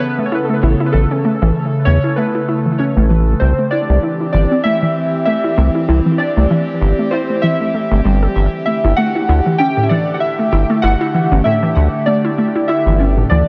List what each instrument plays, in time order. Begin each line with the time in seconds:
Already playing: ambient pad C#3 B3 A4
0.00 synth keys B4
0.18 synth arpeggio sound A3
0.26 synth keys C#5
0.32 synth arpeggio sound E4, synth keys B4
0.45 synth keys A4
0.49 synth arpeggio sound A3
0.53 synth keys B4
0.63 acid bass A1, synth arpeggio sound E4
0.80 synth arpeggio sound E4
0.86 synth keys B4
0.92 acid bass A1, synth arpeggio sound E3, ambient pad A3, synth keys A4
1.11 synth arpeggio sound C#4
1.25 synth arpeggio sound A3
1.42 acid bass A1, synth arpeggio sound E3
1.85 acid bass E2, synth arpeggio sound A3, synth keys C#5
2.04 synth arpeggio sound E4
2.16 synth arpeggio sound A3, synth keys B4
2.35 synth arpeggio sound E4
2.48 synth arpeggio sound E4
2.66 synth arpeggio sound E3
2.79 synth arpeggio sound C#4
2.97 acid bass A1, synth arpeggio sound A3
3.10 synth arpeggio sound E3
3.40 acid bass C2, ambient pad E3 C4 G4, synth keys C5
3.59 synth arpeggio sound A3
3.71 synth arpeggio sound E4, synth keys D5
3.89 acid bass C2, synth arpeggio sound A3
4.03 synth arpeggio sound E4
4.20 synth arpeggio sound E4
4.33 acid bass G1, synth arpeggio sound E3, synth keys D5
4.51 synth arpeggio sound C4
4.64 synth arpeggio sound A3, synth keys E5
4.82 synth arpeggio sound E3
5.25 synth arpeggio sound A3, synth keys E5
5.44 synth arpeggio sound E4
5.58 acid bass C2, synth arpeggio sound A3
5.75 synth arpeggio sound E4
5.89 acid bass C2, synth arpeggio sound E4
6.06 synth arpeggio sound E3
6.18 synth arpeggio sound C4, synth keys D5
6.37 acid bass C2, synth arpeggio sound A3
6.51 synth arpeggio sound E3
6.81 acid bass G1
6.99 synth arpeggio sound A3
7.11 synth arpeggio sound E4, synth keys C5
7.30 synth arpeggio sound A3
7.42 synth arpeggio sound E3, synth keys E5
7.61 synth arpeggio sound A3
7.74 synth arpeggio sound A3
7.91 acid bass G1, synth arpeggio sound A3
8.05 acid bass G1, synth arpeggio sound G3
8.22 synth arpeggio sound A4
8.36 acid bass G1, ambient pad D3 A3
8.66 synth arpeggio sound A3, synth keys E5
8.84 acid bass G1, synth arpeggio sound E4
8.96 synth arpeggio sound A3, synth keys F#5
9.15 synth arpeggio sound E4
9.29 acid bass D2, synth arpeggio sound E4
9.46 synth arpeggio sound E3
9.58 synth arpeggio sound C#4, synth keys G5
9.77 synth arpeggio sound A2
9.83 synth keys E5
9.89 synth arpeggio sound E3, synth keys D5
10.14 synth keys F#5
10.20 synth keys E5
10.39 synth arpeggio sound A3
10.53 acid bass G1, synth arpeggio sound E4
10.70 synth arpeggio sound A3
10.82 acid bass G1, synth arpeggio sound E4, synth keys F#5
11.01 synth arpeggio sound E4
11.14 synth arpeggio sound E3
11.32 acid bass G1, synth arpeggio sound C#4
11.44 synth arpeggio sound A2, synth keys E5
11.63 synth arpeggio sound E3
11.76 acid bass D2
12.06 synth arpeggio sound A3, synth keys D5
12.25 synth arpeggio sound E4
12.38 synth arpeggio sound A3
12.55 synth arpeggio sound E4
12.68 synth arpeggio sound E4, synth keys E5
12.86 acid bass G1, synth arpeggio sound E3
13.00 synth arpeggio sound C#4
13.17 synth arpeggio sound A2
13.30 acid bass D2, synth arpeggio sound E3, ambient pad A3 F4, synth keys D5